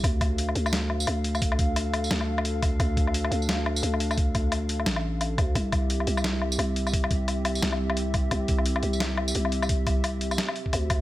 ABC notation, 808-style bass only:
X:1
M:4/4
L:1/8
Q:"Swing 16ths" 1/4=174
K:Dm
V:1 name="808-style bass" clef=bass
D,,3 D,,3 D,,2- | D,,4 D,,4 | D,,3 D,,3 D,,2- | D,,4 A,,,3 D,, |
C,,3 C,,3 C,,2- | C,,4 C,,4 | C,,3 C,,3 C,,2- | C,,4 z2 D,,2 |]